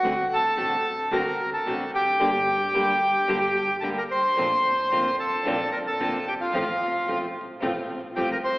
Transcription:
Already playing: F#4 F#5
0.03 D2 D3 A3 C4 F#4
0.33 A4 A5
0.57 A1 D3 A3 C4 F#4
1.11 D2 D3 A3 C4 F#4 A#4 A#5
1.53 A4 A5
1.66 A1 D3 A3 C4 F#4
1.94 F1 G4 G5
2.19 G1 D3 G3 A#3 D4 G4
2.73 D2 D3 G3 A#3 D4 G4
3.28 G1 D3 G3 A#3 D4 G4
3.81 D2 D3 G3 A#3 D4 G4 G5 A5
3.98 A#4 A#5
4.11 C5 C6
4.37 A#1 D3 A#3 C4 D4 F4
4.91 F1 D3 A#3 C4 D4 F4
5.20 A4 A5
5.45 A#1 D3 A#3 C4 D4 F4
5.72 A#4 A#5
5.87 A4 A5
6.00 F1 D3 A#3 C4 D4 F4
6.28 G4 G5
6.41 F4 F5
6.53 A1 F3 A3 C4 F4
7.07 A1 F3 A3 C4 F4
7.62 A1 F3 A3 C4 F4
8.16 A1 F3 A3 C4 F4 G4 G5
8.32 A#4 A#5
8.44 C5 C6

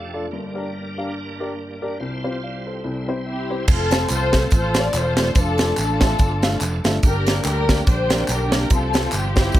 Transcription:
Already playing: F1 F2 F3 A3 D4 A4 F5
0.14 D4 F4 A4 D5
0.31 G1 G2 G3 A#3 D4 A#4
0.55 D4 G4 A#4 D5
0.98 D4 G4 A#4 F5
1.40 D4 G4 A#4 D5
1.82 D4 G4 A#4 D5
2.00 C2 C3 C4 F4 C5
2.24 C4 F4 G4 C5
2.43 D5 F5
2.67 A4 C5
2.84 C2 C3 E4
3.08 C4 E4 G4 C5 G5
3.26 C4 E4 G4 E5
3.50 C4 E4 G4 C5
3.67 F1 F3 A3 C4 F4 A4, kick, crash, tambourine
3.91 A3 C4 F4 A4 C5, snare, closed hi-hat, tambourine
4.09 C2 F4 A4 C5, clap, closed hi-hat, tambourine
4.33 A3 C4 F4 A4 C5, kick, snare, closed hi-hat, tambourine
4.50 A1 F4, kick, closed hi-hat, tambourine
4.55 A4 C5
4.74 A3 C4 F4 A4 C5, snare, closed hi-hat, tambourine
4.79 D5
4.94 E1 F4 A4 C5, clap, closed hi-hat, tambourine
5.17 A3 C4 F4 A4 D5, snare, closed hi-hat, tambourine
5.35 F1 D4 F4 A4, kick, closed hi-hat, tambourine
5.58 A3 D4 F4 A4 D5, snare, closed hi-hat, tambourine
5.77 A1 D4 F4 A4, clap, closed hi-hat, tambourine
6.01 A3 D4 F4 A4 E5, kick, snare, closed hi-hat, tambourine
6.18 G1, kick, closed hi-hat, tambourine
6.42 A3 D4 F4 A4 F5, snare, closed hi-hat, tambourine
6.61 F1, clap, closed hi-hat, tambourine
6.84 G1 A3 D4 F4 A4 E5, snare, closed hi-hat, tambourine
7.03 G1 G2 D3 G3 A#3 D4 G4 A#4, kick, closed hi-hat, tambourine
7.27 A#3 D4 G4 A#4 D5, snare, closed hi-hat, tambourine
7.45 D2 D4 G4 A#4, clap, closed hi-hat, tambourine
7.69 A#3 D4 G4 A#4 D5, kick, snare, closed hi-hat, tambourine
7.87 A#1 G4 C5, kick, closed hi-hat, tambourine
8.10 A#3 D4 G4 A#4 D5, snare, closed hi-hat, tambourine
8.28 B1 D4 G4 A#4, clap, closed hi-hat, tambourine
8.52 A#3 D4 G4 A#4 D5, snare, closed hi-hat, tambourine
8.70 C2 C3 F3 G3 C4 F4 A4, kick, closed hi-hat, tambourine
8.93 G3 C4 F4 G4 C5, snare, closed hi-hat, tambourine
9.12 G1 G4, clap, closed hi-hat, tambourine
9.36 G3 C4 E4 F4 G4 C5, kick, snare, closed hi-hat, tambourine
9.52 C2 C3 E3, kick, closed hi-hat, tambourine

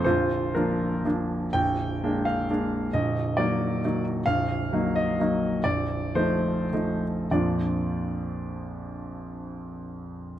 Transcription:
0.04 A#0 A#1 F4 C5
0.55 F3 A#3 D4 F4 A#4
1.05 F3 A#3 D4
1.53 A#0 A#1 G5
2.03 G#3 A#3 D4
2.25 F5
2.50 G#3 A#3 D4
2.93 A#0 A#1 D#5
3.37 F#3 A#3 D#4 D5
3.85 F#3 A#3 D#4
4.26 A#0 A#1 F5
4.73 F#3 A#3 D#4
4.96 D#5
5.20 F#3 A#3 D#4
5.64 A#0 A#1 D5
6.15 F3 A3 D#4 C5
6.73 F3 A3 D#4
7.31 A#1 F2 F3 A#3 D4 F4 D5

